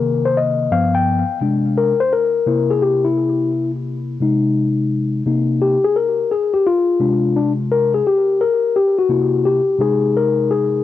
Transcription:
0.00 0.68 C3 medium
0.00 0.69 D#3 medium
0.00 0.69 A#3 medium
0.00 0.27 A#4 medium
0.26 0.38 C5 medium
0.37 0.73 D#5 medium
0.71 1.22 G2 medium
0.71 1.22 F3 medium
0.71 1.23 B3 medium
0.71 0.93 F5 loud
0.95 1.39 G5 medium
1.41 1.92 C3 soft
1.41 1.92 G#3 soft
1.41 1.92 D4 medium
1.78 2.01 A#4 medium
2.00 2.12 C5 loud
2.13 2.72 A#4 loud
2.46 4.17 C3 medium
2.46 4.17 A#3 soft
2.46 3.04 E4 medium
2.70 2.82 G#4 medium
2.82 3.05 G4 medium
3.05 3.70 E4 medium
4.21 5.22 C3 medium
4.21 5.22 G#3 medium
4.21 5.22 D#4 medium
5.26 5.76 C3 medium
5.26 5.76 A#3 soft
5.26 5.77 D#4 medium
5.62 5.85 G4 medium
5.85 5.96 G#4 medium
5.96 6.32 A#4 medium
6.31 6.52 G#4 medium
6.54 6.66 G4 medium
6.67 7.38 F4 medium
7.00 8.01 C3 medium
7.00 8.01 G#3 soft
7.00 7.35 D4 medium
7.36 7.52 D4 medium
7.71 7.92 A#4 loud
7.94 8.06 G#4 medium
8.07 8.42 G4 medium
8.41 8.76 A#4 medium
8.76 8.97 G4 medium
8.99 9.46 F#4 medium
9.09 9.60 C3 medium
9.09 9.60 A#3 soft
9.09 9.60 E4 medium
9.46 9.81 G4 medium
9.79 10.80 C3 medium
9.79 10.80 G#3 medium
9.79 10.80 D#4 medium
9.79 10.16 G#4 medium
10.17 10.51 A#4 medium
10.51 10.84 G#4 medium

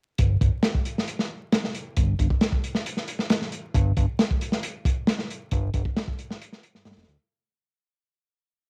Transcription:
0.18 0.37 G1 medium
0.18 kick medium
0.18 closed hi-hat medium
0.41 0.50 G1 medium
0.41 kick medium
0.41 closed hi-hat medium
0.63 snare loud
0.63 closed hi-hat medium
0.75 kick medium
0.85 closed hi-hat medium
0.98 snare soft
1.08 closed hi-hat medium
1.19 snare soft
1.53 snare loud
1.53 closed hi-hat medium
1.64 snare soft
1.75 closed hi-hat medium
1.97 2.15 G1 loud
1.97 kick loud
1.97 closed hi-hat medium
2.19 2.28 G1 medium
2.19 kick medium
2.19 closed hi-hat medium
2.30 kick medium
2.41 snare loud
2.41 closed hi-hat medium
2.52 kick medium
2.64 closed hi-hat medium
2.75 snare soft
2.86 closed hi-hat medium
2.97 snare soft
3.08 closed hi-hat medium
3.19 snare soft
3.30 snare loud
3.30 closed hi-hat medium
3.41 snare soft
3.52 closed hi-hat medium
3.74 3.92 G1 loud
3.74 kick loud
3.74 closed hi-hat medium
3.97 4.06 G1 medium
3.97 kick medium
3.97 closed hi-hat medium
4.19 snare loud
4.19 closed hi-hat medium
4.31 kick medium
4.41 closed hi-hat medium
4.52 snare medium
4.63 closed hi-hat medium
4.85 kick loud
4.85 closed hi-hat medium
5.07 snare loud
5.07 closed hi-hat medium
5.19 snare medium
5.31 closed hi-hat medium
5.51 5.70 G1 loud
5.51 kick loud
5.51 closed hi-hat medium
5.74 5.83 G1 medium
5.74 kick medium
5.74 closed hi-hat medium
5.85 kick medium
5.97 snare loud
5.97 closed hi-hat medium
6.08 kick loud
6.19 closed hi-hat medium
6.30 snare soft
6.41 closed hi-hat medium
6.52 snare soft
6.63 closed hi-hat medium
6.75 6.84 G2 soft
6.75 snare soft
6.85 6.95 G2 loud
6.85 snare medium
6.85 closed hi-hat medium
6.91 snare medium
6.91 closed hi-hat medium
6.97 7.06 F1 medium
6.97 snare medium
6.97 closed hi-hat medium
7.03 snare medium
7.03 closed hi-hat medium
7.08 7.17 D2 medium
7.08 closed hi-hat medium

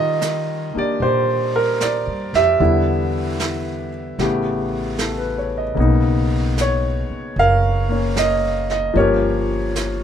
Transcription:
0.00 0.71 D#3 medium
0.00 2.59 D#3 soft
0.00 2.58 G3 soft
0.00 2.61 F4 soft
0.00 0.79 D#5 medium
0.22 snare soft
0.22 hi-hat pedal medium
0.74 2.59 A#3 soft
0.74 2.60 D4 soft
0.74 1.02 G4 soft
0.74 muted upright bass stroke soft
0.78 1.04 D5 medium
1.00 2.02 A#2 medium
1.00 2.35 G4 medium
1.00 1.51 C5 medium
1.00 brush sweep soft
1.56 1.82 A#4 medium
1.81 2.35 D5 medium
1.81 snare soft
1.81 hi-hat pedal soft
2.07 2.32 G2 soft
2.33 2.58 F2 medium
2.33 3.90 G4 soft
2.33 3.89 E5 medium
2.33 snare soft
2.60 4.15 E2 medium
2.60 4.18 D3 soft
2.60 4.18 G3 soft
2.60 4.18 B3 soft
2.60 4.19 E4 soft
2.60 brush sweep soft
3.40 snare soft
3.40 hi-hat pedal soft
4.19 5.73 A1 medium
4.19 5.73 C#3 soft
4.19 5.78 A3 soft
4.19 5.77 B3 soft
4.19 5.78 G4 medium
4.19 brush sweep soft
4.19 snare soft
4.98 5.35 A4 soft
4.98 snare soft
4.98 hi-hat pedal soft
5.18 5.52 B4 soft
5.38 5.62 C#5 soft
5.58 5.85 D#5 soft
5.75 7.06 B1 medium
5.75 8.94 C#3 soft
5.75 7.88 A#3 soft
5.75 8.96 B3 soft
5.75 brush sweep soft
5.80 8.97 D#4 soft
6.58 7.41 C#5 medium
6.58 snare soft
6.58 hi-hat pedal soft
7.10 muted upright bass stroke soft
7.36 8.91 F#1 medium
7.36 8.93 A#4 medium
7.36 8.20 F5 medium
7.36 brush sweep soft
7.89 8.93 A#3 soft
7.89 8.95 C#4 soft
8.16 8.70 D#5 medium
8.16 snare soft
8.16 hi-hat pedal soft
8.70 8.97 D#5 medium
8.70 snare soft
8.94 10.03 G1 medium
8.94 10.03 F3 medium
8.94 10.03 A#3 soft
8.94 10.03 C#4 soft
8.94 10.03 C#5 medium
8.94 brush sweep soft
8.98 10.03 G4 medium
8.98 10.03 A#4 soft
9.76 snare soft
9.76 hi-hat pedal soft

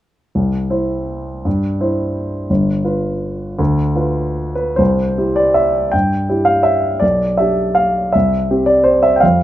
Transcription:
0.35 0.70 C2 soft
0.70 1.41 E4 soft
0.70 1.41 C5 soft
1.45 1.79 G2 soft
1.80 2.46 E4 soft
1.80 2.46 C5 soft
2.50 2.84 G1 soft
2.84 3.55 F4 soft
2.84 3.55 B4 soft
3.59 3.95 D2 soft
3.96 4.75 F4 soft
3.96 4.54 B4 soft
4.55 4.78 B4 soft
4.76 5.17 C2 soft
4.76 5.36 C5 soft
5.18 5.89 E4 soft
5.18 5.89 G4 soft
5.36 5.56 D5 soft
5.54 5.92 E5 soft
5.92 6.27 G2 soft
5.92 6.46 G5 soft
6.29 6.99 E4 soft
6.29 6.99 G4 soft
6.45 6.65 F5 medium
6.63 7.01 E5 medium
7.00 7.37 B1 soft
7.00 7.38 D5 soft
7.38 8.10 D4 soft
7.38 8.10 G4 soft
7.38 7.76 E5 soft
7.75 8.13 F5 medium
8.13 8.49 C2 soft
8.13 8.67 E5 soft
8.51 9.19 C4 soft
8.51 9.19 G4 soft
8.66 8.86 D5 medium
8.84 9.03 C5 medium
9.03 9.15 E5 medium
9.16 9.23 G5 soft
9.20 9.43 F2 soft
9.20 9.43 F5 medium

